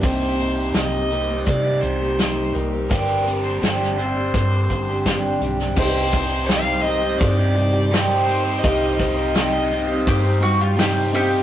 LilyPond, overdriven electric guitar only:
\new Staff \with { instrumentName = "Overdriven electric guitar" } { \time 4/4 \key c \minor \tempo 4 = 84 <c g c' ees' g'>4. <c g c' ees' g'>2~ <c g c' ees' g'>8 | <g, d g c' d' g'>4. <g, d g c' d' g'>2~ <g, d g c' d' g'>8 | <c g c' ees' g' c''>8. <c' ees' g' c''>16 <c g c' ees' g' c''>8 <c' ees' g' c''>16 <c' ees' g' c''>8 <c' ees' g' c''>8. <c g c' ees' g' c''>8 <c' ees' g' c''>16 <c' ees' g' c''>16 | <c g c' ees' g' c''>8. <c' ees' g' c''>16 <c g c' ees' g' c''>8 <c' ees' g' c''>16 <c' ees' g' c''>8 <c' ees' g' c''>8. <c g c' ees' g' c''>8 <c' ees' g' c''>16 <c' ees' g' c''>16 | }